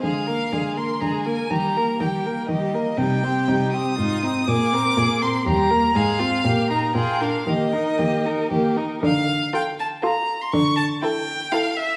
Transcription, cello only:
X:1
M:3/4
L:1/8
Q:1/4=121
K:Eb
V:1 name="Cello" clef=bass
D,2 D,2 D,2 | E,2 E,2 E,2 | C,2 C,2 A,,2 | B,,2 B,,2 E,,2 |
A,,2 B,,2 B,,2 | E,2 E,2 E,2 | [K:Dm] D,2 z4 | D,2 z4 |]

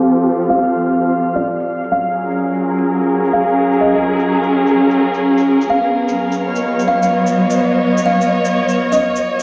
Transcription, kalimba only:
X:1
M:4/4
L:1/16
Q:"Swing 16ths" 1/4=127
K:Gb
V:1 name="Kalimba"
z4 f2 z4 z =d3 z2 | f2 z8 z2 f2 z2 | e e z12 z2 | f2 z8 f f z4 |
z4 f2 z4 z ^d3 z2 |]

